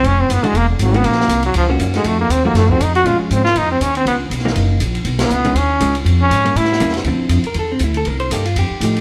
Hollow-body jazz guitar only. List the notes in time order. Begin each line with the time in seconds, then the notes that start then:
0.43 E3 G#3 D4 F#4
0.95 D#3 A#3 C#4 F#4
1.69 D#3 A#3 C#4 F#4
1.96 A3 D#4 F#4
2.45 F3 A3 D#4 F#4
2.71 F3 A3 D#4 F#4
3.06 F3 G#3 C#4
4.45 E3 A#3 D#4
5.45 D#3 G#3 C#4
5.81 D#3 G#3 C#4
6.45 G3 A#3 C#4
6.80 G3 A#3 C#4
7.07 D3 F3 C4 E4
7.47 A#4
7.59 A4
7.72 C4
7.84 E4
7.97 A4
8.07 A#4
8.20 C5
8.32 A#3 D#4 G4 A4
8.45 F4
8.59 G4
8.82 F3 A3 D#4 G4